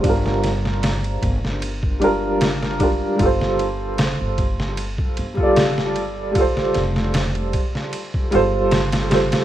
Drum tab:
RD |x-x-xxx-x-x-x-x-|x-x-x-x-x-x-x-x-|x-x-xxx-x-x-xxxx|
SD |-oooo--o----oo--|-o--o--o----oo--|-oooo--o----oooo|
BD |o-----o--o----o-|o-----o--o-o----|o-----o--o------|